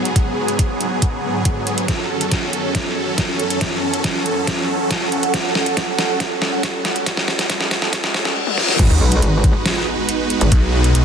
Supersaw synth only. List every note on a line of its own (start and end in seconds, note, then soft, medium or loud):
0.00 1.85 G#2 medium
0.00 8.32 F#3 medium
0.00 1.85 B3 medium
0.00 1.85 G#4 medium
1.89 8.32 F#2 medium
1.89 8.32 A4 medium
8.79 11.05 G#3 medium
8.79 11.05 D#4 medium
8.79 11.05 F#4 medium
8.79 11.05 B4 medium